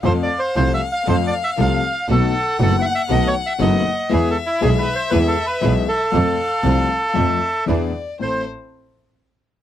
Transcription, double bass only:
0, 0, Header, 1, 2, 480
1, 0, Start_track
1, 0, Key_signature, 0, "minor"
1, 0, Tempo, 509771
1, 40, Time_signature, 4, 2, 24, 8
1, 9063, End_track
2, 0, Start_track
2, 0, Title_t, "Double bass"
2, 0, Program_c, 0, 43
2, 35, Note_on_c, 0, 41, 102
2, 241, Note_off_c, 0, 41, 0
2, 528, Note_on_c, 0, 36, 101
2, 730, Note_off_c, 0, 36, 0
2, 1013, Note_on_c, 0, 41, 96
2, 1213, Note_off_c, 0, 41, 0
2, 1493, Note_on_c, 0, 36, 95
2, 1690, Note_off_c, 0, 36, 0
2, 1960, Note_on_c, 0, 35, 98
2, 2162, Note_off_c, 0, 35, 0
2, 2445, Note_on_c, 0, 30, 101
2, 2643, Note_off_c, 0, 30, 0
2, 2918, Note_on_c, 0, 35, 102
2, 3116, Note_off_c, 0, 35, 0
2, 3393, Note_on_c, 0, 30, 106
2, 3592, Note_off_c, 0, 30, 0
2, 3877, Note_on_c, 0, 40, 97
2, 4073, Note_off_c, 0, 40, 0
2, 4360, Note_on_c, 0, 35, 109
2, 4551, Note_off_c, 0, 35, 0
2, 4832, Note_on_c, 0, 40, 106
2, 5027, Note_off_c, 0, 40, 0
2, 5306, Note_on_c, 0, 35, 109
2, 5502, Note_off_c, 0, 35, 0
2, 5777, Note_on_c, 0, 41, 104
2, 5979, Note_off_c, 0, 41, 0
2, 6252, Note_on_c, 0, 36, 106
2, 6459, Note_off_c, 0, 36, 0
2, 6744, Note_on_c, 0, 41, 89
2, 6949, Note_off_c, 0, 41, 0
2, 7234, Note_on_c, 0, 40, 94
2, 7441, Note_off_c, 0, 40, 0
2, 7730, Note_on_c, 0, 33, 56
2, 7930, Note_off_c, 0, 33, 0
2, 9063, End_track
0, 0, End_of_file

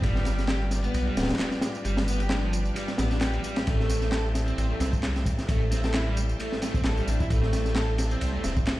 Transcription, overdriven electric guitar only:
0, 0, Header, 1, 2, 480
1, 0, Start_track
1, 0, Key_signature, 0, "minor"
1, 0, Tempo, 454545
1, 34, Time_signature, 4, 2, 24, 8
1, 9292, End_track
2, 0, Start_track
2, 0, Title_t, "Overdriven electric guitar"
2, 0, Program_c, 0, 29
2, 35, Note_on_c, 0, 55, 81
2, 503, Note_off_c, 0, 55, 0
2, 514, Note_on_c, 0, 67, 82
2, 625, Note_off_c, 0, 67, 0
2, 885, Note_on_c, 0, 59, 105
2, 1112, Note_off_c, 0, 59, 0
2, 1125, Note_on_c, 0, 55, 78
2, 1229, Note_off_c, 0, 55, 0
2, 1234, Note_on_c, 0, 59, 77
2, 1345, Note_off_c, 0, 59, 0
2, 1956, Note_on_c, 0, 55, 83
2, 2079, Note_off_c, 0, 55, 0
2, 2195, Note_on_c, 0, 59, 82
2, 2306, Note_off_c, 0, 59, 0
2, 2323, Note_on_c, 0, 67, 76
2, 2422, Note_off_c, 0, 67, 0
2, 2431, Note_on_c, 0, 62, 102
2, 2550, Note_off_c, 0, 62, 0
2, 2562, Note_on_c, 0, 53, 73
2, 2667, Note_off_c, 0, 53, 0
2, 2912, Note_on_c, 0, 55, 84
2, 3037, Note_off_c, 0, 55, 0
2, 3153, Note_on_c, 0, 59, 81
2, 3271, Note_off_c, 0, 59, 0
2, 3283, Note_on_c, 0, 62, 77
2, 3382, Note_off_c, 0, 62, 0
2, 3392, Note_on_c, 0, 67, 82
2, 3511, Note_off_c, 0, 67, 0
2, 3525, Note_on_c, 0, 55, 77
2, 3580, Note_off_c, 0, 55, 0
2, 3634, Note_on_c, 0, 55, 74
2, 3752, Note_off_c, 0, 55, 0
2, 3763, Note_on_c, 0, 67, 74
2, 3857, Note_off_c, 0, 67, 0
2, 3872, Note_on_c, 0, 57, 85
2, 4342, Note_off_c, 0, 57, 0
2, 4354, Note_on_c, 0, 69, 81
2, 4465, Note_off_c, 0, 69, 0
2, 4722, Note_on_c, 0, 60, 104
2, 4950, Note_off_c, 0, 60, 0
2, 4962, Note_on_c, 0, 57, 75
2, 5067, Note_off_c, 0, 57, 0
2, 5073, Note_on_c, 0, 60, 81
2, 5185, Note_off_c, 0, 60, 0
2, 5794, Note_on_c, 0, 57, 80
2, 5918, Note_off_c, 0, 57, 0
2, 6033, Note_on_c, 0, 60, 78
2, 6145, Note_off_c, 0, 60, 0
2, 6166, Note_on_c, 0, 69, 80
2, 6264, Note_off_c, 0, 69, 0
2, 6274, Note_on_c, 0, 64, 101
2, 6391, Note_off_c, 0, 64, 0
2, 6405, Note_on_c, 0, 55, 77
2, 6509, Note_off_c, 0, 55, 0
2, 6753, Note_on_c, 0, 57, 86
2, 6878, Note_off_c, 0, 57, 0
2, 6992, Note_on_c, 0, 57, 81
2, 7111, Note_off_c, 0, 57, 0
2, 7125, Note_on_c, 0, 60, 104
2, 7180, Note_off_c, 0, 60, 0
2, 7234, Note_on_c, 0, 69, 102
2, 7358, Note_off_c, 0, 69, 0
2, 7365, Note_on_c, 0, 55, 77
2, 7469, Note_off_c, 0, 55, 0
2, 7474, Note_on_c, 0, 62, 81
2, 7585, Note_off_c, 0, 62, 0
2, 7603, Note_on_c, 0, 64, 77
2, 7660, Note_off_c, 0, 64, 0
2, 7713, Note_on_c, 0, 57, 88
2, 8182, Note_off_c, 0, 57, 0
2, 8194, Note_on_c, 0, 69, 84
2, 8305, Note_off_c, 0, 69, 0
2, 8566, Note_on_c, 0, 60, 102
2, 8792, Note_off_c, 0, 60, 0
2, 8802, Note_on_c, 0, 57, 75
2, 8907, Note_off_c, 0, 57, 0
2, 8913, Note_on_c, 0, 60, 84
2, 9024, Note_off_c, 0, 60, 0
2, 9292, End_track
0, 0, End_of_file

